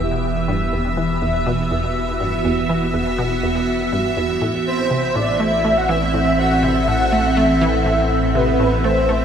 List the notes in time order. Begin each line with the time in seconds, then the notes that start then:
Already playing: E1 E3 B3 G4 E5
0.00 E2
0.48 G2
0.73 E2
0.97 E3
1.14 F#4
1.22 E2
1.46 B2
1.71 E2
2.20 G2
2.45 E2
2.69 E3
2.94 E2
3.18 B2
3.43 E2
3.92 G2
4.17 E2
4.41 A1 A2 E3
4.67 C5
4.91 C3
4.96 C4
5.15 A2 D5
5.40 A3 E5
5.64 A3
5.75 A4 F#5
5.89 E3 E5
6.14 A2
6.39 F#5
6.63 C3 E5
6.88 A2 F#5
7.12 A3
7.37 A3 E5
7.61 E3
7.86 A2
8.35 C3 B4
8.59 A2
8.84 A3 C5
9.09 A3